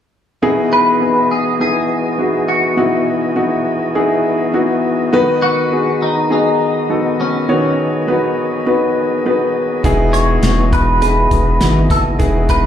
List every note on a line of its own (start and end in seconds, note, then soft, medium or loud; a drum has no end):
0.42 1.27 B2 medium
0.42 5.10 E3 medium
0.42 0.90 B3 medium
0.42 12.66 B3 soft
0.42 0.90 D#4 medium
0.42 0.90 E4 medium
0.42 7.45 F#4 soft
0.42 0.90 G#4 loud
0.42 5.09 G#4 medium
0.42 12.66 D#5 soft
0.73 1.27 B4 medium
1.01 1.49 B3 medium
1.01 1.49 D#4 medium
1.01 1.49 E4 medium
1.01 1.49 G#4 medium
1.31 1.58 G#4 medium
1.60 2.08 B3 medium
1.60 2.08 D#4 medium
1.60 2.08 E4 medium
1.60 2.08 G#4 medium
1.60 2.45 G#4 medium
2.18 2.67 B3 medium
2.18 2.67 D#4 medium
2.18 2.67 E4 soft
2.18 2.67 F#4 medium
2.48 3.03 F#4 medium
2.77 3.62 B2 soft
2.77 3.25 B3 medium
2.77 3.25 D#4 medium
2.77 3.25 E4 medium
2.77 3.26 F#4 medium
3.36 3.84 B3 medium
3.36 3.84 D#4 medium
3.36 3.84 E4 medium
3.36 3.84 F#4 medium
3.95 4.43 B3 medium
3.95 4.43 D#4 medium
3.95 4.43 E4 medium
3.95 4.43 G#4 medium
4.53 5.02 B3 medium
4.53 5.02 D#4 medium
4.53 5.02 E4 medium
4.53 5.02 F#4 medium
5.13 5.97 D#3 medium
5.13 9.80 D#3 medium
5.13 5.61 B3 loud
5.13 5.61 D#4 medium
5.13 5.61 F#4 medium
5.13 5.61 B4 loud
5.42 6.03 F#4 medium
5.72 6.20 B3 medium
5.72 6.20 D#4 medium
5.72 6.20 F#4 medium
5.72 6.20 G#4 medium
6.02 6.31 D#4 medium
6.30 6.78 B3 medium
6.30 6.78 D#4 medium
6.30 7.20 D#4 medium
6.30 6.78 F#4 medium
6.30 6.79 G#4 medium
6.89 7.38 B3 medium
6.89 7.38 D#4 medium
6.89 7.38 F#4 medium
6.89 7.38 A4 medium
7.21 7.75 C#4 medium
7.49 8.33 D#3 medium
7.49 7.96 B3 medium
7.49 7.97 D#4 medium
7.49 7.97 F#4 medium
7.49 12.66 G#4 medium
7.49 7.97 C#5 medium
8.08 8.55 B3 medium
8.08 8.55 D#4 medium
8.08 8.56 F#4 medium
8.08 8.56 B4 medium
8.66 9.14 B3 medium
8.66 9.14 D#4 medium
8.66 9.14 F#4 medium
8.66 9.14 B4 medium
9.26 9.73 B3 medium
9.26 9.74 D#4 medium
9.26 9.74 F#4 medium
9.26 9.74 B4 medium
9.84 10.39 E1 medium
9.84 10.69 B2 medium
9.84 12.66 E3 medium
9.84 10.32 B3 medium
9.84 10.32 D#4 medium
9.84 10.32 E4 medium
9.84 12.66 F#4 soft
9.84 10.32 G#4 loud
9.84 kick medium
9.84 closed hi-hat medium
10.13 10.72 C#5 medium
10.13 closed hi-hat medium
10.43 11.27 E1 medium
10.43 10.91 B3 medium
10.43 10.91 D#4 medium
10.43 10.91 E4 medium
10.43 10.91 F#4 medium
10.43 snare medium
10.43 closed hi-hat medium
10.73 11.00 B4 medium
10.73 kick medium
10.73 closed hi-hat medium
11.01 11.50 B3 medium
11.01 11.50 D#4 medium
11.01 11.50 E4 soft
11.01 11.50 G#4 medium
11.01 11.91 B4 medium
11.01 closed hi-hat medium
11.31 11.59 E1 medium
11.31 kick medium
11.31 closed hi-hat medium
11.60 11.88 G#1 medium
11.60 12.09 B3 medium
11.60 12.09 D#4 soft
11.60 12.09 E4 medium
11.60 12.09 F#4 medium
11.60 snare medium
11.60 closed hi-hat medium
11.90 12.17 F#1 medium
11.90 11.99 A4 medium
11.90 kick medium
11.90 snare soft
11.90 closed hi-hat medium
12.19 12.66 E1 medium
12.19 12.66 B2 medium
12.19 12.66 B3 medium
12.19 12.66 D#4 medium
12.19 12.66 E4 medium
12.19 12.66 G#4 medium
12.19 kick medium
12.19 closed hi-hat medium
12.49 12.66 B4 medium
12.49 kick medium
12.49 closed hi-hat medium